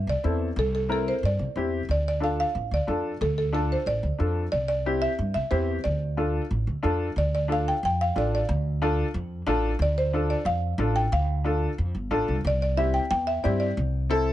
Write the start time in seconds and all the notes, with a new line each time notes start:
0.07 C2 D5
0.24 E2 C4 E4 A4
0.56 C2 A4
0.75 A4
0.89 C4 E4 A4 A#4
1.08 C5
1.23 G2 D5
1.39 C2
1.56 E2 C4 E4 G4
1.89 D2 D5
2.08 D5
2.20 D4 F4 A4 F5
2.40 F5
2.55 A1
2.71 D2 D5
2.87 F2 D4 F4 A4
3.21 D2 A4
3.38 A4
3.53 D4 F4 A4
3.72 C5
3.86 A1 D5
4.03 D2
4.19 F2 D4 F4 A4
4.52 C2 D5
4.68 D5
4.86 C4 E4 G4
5.02 E5
5.19 G2
5.34 C2 E5
5.50 E2 C4 E4 G4 C5
5.84 D2 D5
6.17 D4 F4 A4
6.51 A1
6.67 D2
6.83 F2 D4 F4 A4
7.16 D2 D5
7.35 D5
7.48 D4 F4 A4
7.52 F5
7.68 G5
7.83 F2 G5
8.01 F5
8.16 A1 D4 F4 A4 D5
8.35 D5
8.49 D2
8.82 D4 F4 A4
9.14 F2
9.46 A1 D4 F4 A4
9.79 D2 D5
9.98 C5
10.13 D4 F4 A4
10.30 D5
10.45 F2 F5
10.78 A1 D4 F4 A4
10.96 G5
11.12 D2 F5
11.44 D4 F4 A4
11.78 F2
11.95 G1
12.10 A1 D4 F4 A4
12.28 C2
12.44 C2 D5
12.62 D5
12.77 C4 E4 G4 E5
12.94 G5
13.11 E2 G5
13.27 E5
13.43 G2 C4 E4 G4 D5
13.60 D5
13.77 C2
14.10 C4 E4 A4